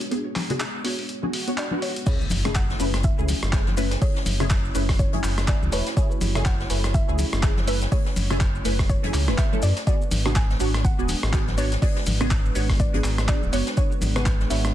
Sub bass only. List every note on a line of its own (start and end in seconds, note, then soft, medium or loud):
2.31 2.75 F#1 loud
2.80 3.11 F#1 loud
3.18 3.34 C#2 medium
3.43 3.97 F#1 medium
4.26 4.70 F#1 loud
4.75 5.06 F#1 loud
5.13 5.20 F#1 medium
5.24 5.55 F#1 medium
5.62 5.69 C#2 medium
5.72 5.82 E1 loud
6.21 6.65 F#1 loud
6.70 7.01 F#1 loud
7.09 7.24 C#2 medium
7.33 7.87 F#1 medium
8.16 8.60 F#1 loud
8.65 8.97 F#1 medium
9.04 9.11 F#1 medium
9.14 9.30 C#2 medium
9.28 9.35 E1 medium
9.63 9.72 F#2 loud
10.11 10.55 G#1 loud
10.60 10.92 G#1 medium
10.99 11.14 D1 medium
11.23 11.77 G#1 medium
12.07 12.50 G#1 loud
12.55 12.87 G#1 loud
12.94 13.01 G#1 medium
13.04 13.36 G#1 medium
13.43 13.50 D1 medium
13.53 13.63 F#1 loud
14.02 14.45 G#1 loud
14.50 14.74 G#1 medium